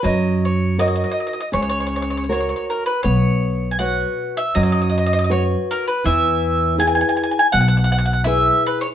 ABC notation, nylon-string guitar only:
X:1
M:4/4
L:1/8
Q:"Swing" 1/4=80
K:B
V:1 name="Nylon-string guitar"
F,2 [FAc]2 C,2 [FAc]2 | B,2 [FBc]2 F,2 [FBc]2 | E,2 [EGB]2 B,,2 [EGB]2 |]